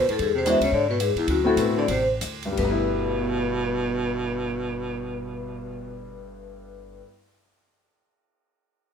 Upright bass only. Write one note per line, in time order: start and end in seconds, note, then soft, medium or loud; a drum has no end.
0.08 muted upright bass stroke soft
0.19 0.58 E2 medium
0.60 0.71 D2 medium
0.72 1.13 G#2 medium
1.15 muted upright bass stroke soft
1.27 1.55 D2 medium
1.57 1.86 A2 medium
1.88 2.19 A1 medium
2.21 2.54 D2 medium
2.57 7.00 G1 medium